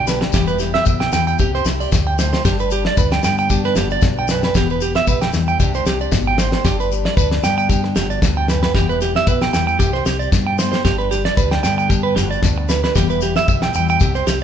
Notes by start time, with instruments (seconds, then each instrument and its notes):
Already playing: fingered electric bass B1, steel-string acoustic guitar G2 D3 B3 D4
0.07 steel-string acoustic guitar G4, clean electric guitar B4, snare, shekere
0.21 muted clean electric guitar stroke, snare, shekere
0.33 fingered electric bass E1, steel-string acoustic guitar E2 E3, clean electric guitar G4, kick, snare, shekere
0.37 steel-string acoustic guitar G3 B3 G4
0.47 clean electric guitar B4, shekere
0.59 steel-string acoustic guitar E4, clean electric guitar G4, snare, shekere
0.74 steel-string acoustic guitar G4, clean electric guitar E5, snare
0.86 fingered electric bass B1, steel-string acoustic guitar B3, kick, shekere
1.00 clean electric guitar G5, snare, shekere
1.12 fingered electric bass E2, steel-string acoustic guitar E3, clean electric guitar G5, snare, shekere
1.27 clean electric guitar G5, shekere
1.39 fingered electric bass C2, steel-string acoustic guitar C3 G4, clean electric guitar G4, kick, shekere
1.54 clean electric guitar C5, snare
1.65 fingered electric bass C2, steel-string acoustic guitar E4, muted clean electric guitar stroke, snare, shekere
1.80 steel-string acoustic guitar G4, clean electric guitar D5, shekere
1.92 fingered electric bass D2, muted steel-string acoustic guitar stroke, kick, snare, shekere
2.07 clean electric guitar G5
2.19 steel-string acoustic guitar A2, clean electric guitar C5, snare, shekere
2.33 clean electric guitar C5, snare, shekere
2.45 fingered electric bass G1, steel-string acoustic guitar G2 D4, clean electric guitar G4, kick, snare, shekere
2.59 clean electric guitar B4, shekere
2.71 clean electric guitar G4, steel-string acoustic guitar G4, shekere
2.85 clean electric guitar D5, snare
2.97 fingered electric bass D2, clean electric guitar B4, kick, shekere
3.12 clean electric guitar G5, snare, shekere
3.23 fingered electric bass G2, steel-string acoustic guitar D3 B3, clean electric guitar G5, snare, shekere
3.38 clean electric guitar G5, shekere
3.50 steel-string acoustic guitar D4, clean electric guitar G4, kick, shekere
3.64 clean electric guitar B4, snare
3.76 fingered electric bass G1, steel-string acoustic guitar G2 F#4, clean electric guitar G4, snare, shekere
3.90 clean electric guitar D5, shekere
4.02 fingered electric bass B1, steel-string acoustic guitar G2, kick, snare, shekere
4.19 clean electric guitar G5
4.28 steel-string acoustic guitar F#2, clean electric guitar B4, snare, shekere
4.43 clean electric guitar B4, snare, shekere
4.55 fingered electric bass E1, steel-string acoustic guitar E2 B3, clean electric guitar G4, kick, snare, shekere
4.70 clean electric guitar B4, shekere
4.81 clean electric guitar G4, steel-string acoustic guitar G4, shekere
4.95 clean electric guitar E5, snare, shekere
5.07 fingered electric bass B1, steel-string acoustic guitar B3, clean electric guitar B4, kick, shekere
5.21 clean electric guitar G5, snare, shekere
5.33 fingered electric bass E2, steel-string acoustic guitar E3 G3, snare, shekere
5.48 clean electric guitar G5, shekere
5.60 fingered electric bass C2, steel-string acoustic guitar C3 G3 D4 G4, clean electric guitar G4, kick, snare, shekere
5.74 clean electric guitar C5, snare, shekere
5.86 fingered electric bass C2, clean electric guitar G4, steel-string acoustic guitar G4, snare, shekere
6.01 clean electric guitar D5, shekere
6.12 fingered electric bass G#1, steel-string acoustic guitar B2, kick, snare, shekere
6.27 clean electric guitar G5
6.38 steel-string acoustic guitar A2, clean electric guitar C5, snare, shekere
6.52 clean electric guitar C5, snare, shekere
6.65 fingered electric bass G1, steel-string acoustic guitar G2 D4, clean electric guitar G4, kick, snare, shekere
6.80 clean electric guitar B4, shekere
6.92 steel-string acoustic guitar G4, shekere
7.05 clean electric guitar D5, snare
7.17 fingered electric bass D2, steel-string acoustic guitar D4, clean electric guitar B4, kick, shekere
7.31 snare, shekere
7.43 fingered electric bass G2, steel-string acoustic guitar D3 B3, clean electric guitar G5, snare, shekere
7.58 clean electric guitar G5, shekere
7.69 steel-string acoustic guitar D4, clean electric guitar G4, kick, snare, shekere
7.84 muted clean electric guitar stroke, snare
7.96 fingered electric bass G1, steel-string acoustic guitar G2 F#4, clean electric guitar G4, snare, shekere
8.10 clean electric guitar D5, shekere
8.22 fingered electric bass D2, steel-string acoustic guitar G2, kick, snare, shekere
8.37 clean electric guitar G5
8.48 steel-string acoustic guitar F#2, clean electric guitar B4, snare, shekere
8.63 clean electric guitar B4, snare, shekere
8.74 fingered electric bass E1, steel-string acoustic guitar E2 E3 G3 B3, clean electric guitar G4, kick, snare, shekere
8.79 steel-string acoustic guitar G4
8.89 clean electric guitar B4, shekere
9.01 clean electric guitar G4, steel-string acoustic guitar G4, snare, shekere
9.16 clean electric guitar E5, snare
9.27 fingered electric bass B1, steel-string acoustic guitar B3, clean electric guitar B4, kick, shekere
9.41 clean electric guitar G5, snare, shekere
9.53 fingered electric bass E2, steel-string acoustic guitar E3 G3, clean electric guitar G5, snare, shekere
9.67 clean electric guitar G5, shekere
9.79 fingered electric bass C2, steel-string acoustic guitar C3 G4, clean electric guitar G4, kick, snare, shekere
9.93 clean electric guitar C5, snare
10.06 fingered electric bass C2, clean electric guitar G4, steel-string acoustic guitar G4, snare, shekere
10.19 clean electric guitar D5, shekere
10.32 fingered electric bass G2, steel-string acoustic guitar B2, kick, snare, shekere
10.47 clean electric guitar G5
10.58 steel-string acoustic guitar A2, clean electric guitar C5, snare, shekere
10.72 clean electric guitar C5, snare, shekere
10.85 fingered electric bass G1, steel-string acoustic guitar G2 D4, clean electric guitar G4, kick, snare, shekere
10.98 clean electric guitar B4, shekere
11.11 clean electric guitar G4, muted steel-string acoustic guitar stroke, snare, shekere
11.25 clean electric guitar D5, snare
11.37 fingered electric bass D2, steel-string acoustic guitar D4, clean electric guitar B4, kick, shekere
11.51 clean electric guitar G5, snare
11.63 fingered electric bass G2, steel-string acoustic guitar D3 B3, clean electric guitar G5, snare, shekere
11.78 clean electric guitar G5, shekere
11.89 steel-string acoustic guitar D4, clean electric guitar G4, kick, snare, shekere
12.03 clean electric guitar B4
12.16 fingered electric bass G1, steel-string acoustic guitar G2 F#4, clean electric guitar G4, snare, shekere
12.31 clean electric guitar D5, shekere
12.42 fingered electric bass D2, steel-string acoustic guitar D4, kick, snare, shekere
12.58 muted clean electric guitar stroke
12.69 steel-string acoustic guitar G4, clean electric guitar B4, snare, shekere
12.84 clean electric guitar B4, snare, shekere
12.96 fingered electric bass E1, steel-string acoustic guitar E2 E3 G3 B3 G4, clean electric guitar G4, kick, snare, shekere
13.10 clean electric guitar B4, shekere
13.21 clean electric guitar G4, steel-string acoustic guitar G4, snare, shekere
13.36 clean electric guitar E5, snare, shekere
13.48 fingered electric bass B1, steel-string acoustic guitar B3, clean electric guitar E5, kick, shekere
13.62 clean electric guitar G5, snare, shekere
13.74 fingered electric bass E2, steel-string acoustic guitar E3 G3, clean electric guitar G5, shekere
13.89 clean electric guitar G5, shekere
14.00 fingered electric bass C2, steel-string acoustic guitar C3 G4, clean electric guitar G4, kick, snare, shekere
14.15 clean electric guitar C5, snare, shekere
14.27 fingered electric bass C2, clean electric guitar G4, steel-string acoustic guitar G4, snare, shekere